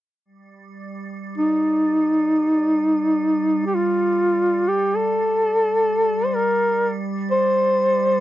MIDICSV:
0, 0, Header, 1, 3, 480
1, 0, Start_track
1, 0, Key_signature, -2, "minor"
1, 0, Tempo, 500000
1, 7874, End_track
2, 0, Start_track
2, 0, Title_t, "Duduk"
2, 0, Program_c, 0, 69
2, 1327, Note_on_c, 0, 63, 62
2, 3480, Note_off_c, 0, 63, 0
2, 3518, Note_on_c, 0, 67, 50
2, 3600, Note_on_c, 0, 65, 65
2, 3615, Note_off_c, 0, 67, 0
2, 4498, Note_on_c, 0, 67, 57
2, 4512, Note_off_c, 0, 65, 0
2, 4762, Note_on_c, 0, 69, 77
2, 4776, Note_off_c, 0, 67, 0
2, 6002, Note_on_c, 0, 72, 50
2, 6017, Note_off_c, 0, 69, 0
2, 6100, Note_on_c, 0, 70, 69
2, 6114, Note_off_c, 0, 72, 0
2, 6697, Note_off_c, 0, 70, 0
2, 7017, Note_on_c, 0, 72, 79
2, 7874, Note_off_c, 0, 72, 0
2, 7874, End_track
3, 0, Start_track
3, 0, Title_t, "Ambient pad"
3, 0, Program_c, 1, 92
3, 244, Note_on_c, 1, 55, 41
3, 7874, Note_off_c, 1, 55, 0
3, 7874, End_track
0, 0, End_of_file